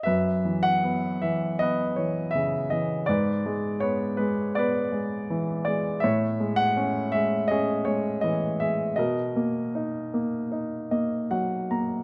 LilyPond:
<<
  \new Staff \with { instrumentName = "Grand piano" } { \time 4/4 \key fis \mixolydian \tempo 4 = 81 << { e''8. fis''8. e''8 dis''8 cis''8 e''8 dis''8 | d''4 cis''8 b'8 d''4. d''8 | e''8. fis''8. e''8 dis''8 cis''8 dis''8 e''8 | dis''2. r4 | } \\ { b'2 b'2 | b'2 b'2 | cis''2 gis'2 | ais'2. r4 | } >> }
  \new Staff \with { instrumentName = "Grand piano" } { \clef bass \time 4/4 \key fis \mixolydian fis,8 e8 b8 e8 b8 e8 cis8 e8 | gis,8 gis8 b8 gis8 b8 gis8 e8 gis8 | a,8 gis8 cis'8 gis8 cis'8 gis8 e8 gis8 | b,8 ais8 dis'8 ais8 dis'8 <ais dis''>8 <fis fis''>8 <ais ais''>8 | }
>>